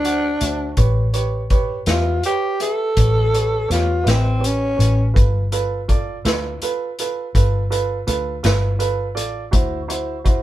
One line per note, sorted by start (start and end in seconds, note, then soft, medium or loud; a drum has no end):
0.00 0.37 D2 medium
0.00 0.76 D4 medium
0.04 0.32 F#4 soft
0.04 0.32 C5 soft
0.04 0.32 F#5 medium
0.04 closed hi-hat soft
0.41 0.75 D2 medium
0.41 0.69 F#4 soft
0.41 0.69 C5 soft
0.41 0.68 E5 soft
0.41 closed hi-hat medium
0.77 1.83 A1 medium
0.77 1.05 G4 medium
0.77 1.05 B4 medium
0.77 1.05 C#5 medium
0.77 kick medium
0.77 closed hi-hat medium
1.13 1.42 G4 medium
1.13 1.41 B4 medium
1.13 1.41 C#5 medium
1.13 closed hi-hat soft
1.50 1.78 G4 medium
1.50 1.78 B4 medium
1.50 1.78 C#5 medium
1.50 kick medium
1.50 closed hi-hat medium
1.86 2.21 E2 medium
1.86 2.15 G4 soft
1.86 2.16 B4 soft
1.86 2.15 E5 medium
1.86 snare medium
1.86 closed hi-hat medium
1.90 2.24 F4 medium
2.23 2.52 G4 soft
2.23 2.60 G4 medium
2.23 2.52 B4 soft
2.23 2.52 C#5 medium
2.23 closed hi-hat medium
2.60 2.88 G4 soft
2.60 3.68 A4 medium
2.60 2.88 B4 soft
2.60 2.88 E5 medium
2.60 closed hi-hat medium
2.97 3.66 A1 medium
2.97 3.24 G4 soft
2.97 3.24 B4 soft
2.97 3.25 C#5 soft
2.97 kick medium
2.97 closed hi-hat medium
3.33 3.61 G4 soft
3.33 3.61 B4 soft
3.33 3.61 C#5 medium
3.33 closed hi-hat soft
3.69 4.04 E2 medium
3.69 4.12 F4 medium
3.69 3.97 G4 medium
3.69 3.97 B4 soft
3.69 3.97 C#5 medium
3.69 snare soft
3.69 closed hi-hat medium
4.03 4.75 A1 medium
4.03 4.32 G4 soft
4.03 4.32 B4 soft
4.03 4.32 E5 medium
4.03 closed hi-hat medium
4.08 4.47 C4 medium
4.08 snare medium
4.40 4.69 G4 soft
4.40 4.69 B4 soft
4.40 4.69 C#5 medium
4.44 5.15 C#4 medium
4.44 closed hi-hat medium
4.77 5.13 A1 medium
4.77 5.05 G4 soft
4.77 5.05 B4 soft
4.77 5.05 C#5 medium
4.77 closed hi-hat medium
5.14 6.21 G1 medium
5.14 5.42 F4 medium
5.14 5.42 A4 soft
5.14 5.42 B4 medium
5.14 kick loud
5.14 closed hi-hat medium
5.52 5.79 F4 medium
5.52 5.79 A4 medium
5.52 5.80 B4 medium
5.52 closed hi-hat medium
5.88 6.16 F4 medium
5.88 6.16 A4 medium
5.88 6.16 D5 medium
5.88 kick medium
5.88 closed hi-hat medium
6.25 6.58 D2 medium
6.25 6.52 F4 medium
6.25 6.52 A4 medium
6.25 6.52 B4 medium
6.25 snare medium
6.25 closed hi-hat medium
6.62 6.89 F4 medium
6.62 6.89 A4 soft
6.62 6.89 B4 medium
6.62 closed hi-hat medium
6.99 7.26 F4 medium
6.99 7.26 A4 soft
6.99 7.26 B4 medium
6.99 closed hi-hat medium
7.35 8.03 G1 medium
7.35 7.62 F4 medium
7.35 7.62 A4 medium
7.35 7.62 B4 medium
7.35 kick medium
7.35 closed hi-hat medium
7.70 7.98 F4 medium
7.70 7.98 A4 medium
7.70 7.98 B4 medium
7.70 closed hi-hat medium
8.07 8.41 D2 medium
8.07 8.34 F4 medium
8.07 8.34 A4 medium
8.07 8.34 B4 medium
8.07 closed hi-hat medium
8.43 9.17 G1 medium
8.43 8.70 F4 medium
8.43 8.70 A4 medium
8.43 8.71 B4 medium
8.43 snare loud
8.43 closed hi-hat medium
8.79 9.06 F4 medium
8.79 9.07 A4 medium
8.79 9.07 B4 medium
8.79 closed hi-hat medium
9.15 9.50 A1 medium
9.15 9.43 F4 medium
9.15 9.43 A4 medium
9.15 9.42 D5 medium
9.15 closed hi-hat medium
9.51 10.43 D2 medium
9.51 9.79 E4 medium
9.51 9.79 F#4 medium
9.51 9.79 C5 medium
9.51 kick medium
9.51 closed hi-hat medium
9.88 10.15 E4 medium
9.88 10.16 F#4 medium
9.88 10.16 C5 medium
9.88 closed hi-hat medium
10.24 10.43 E4 medium
10.24 10.43 F#4 medium
10.24 10.43 C5 medium
10.24 kick medium
10.24 closed hi-hat medium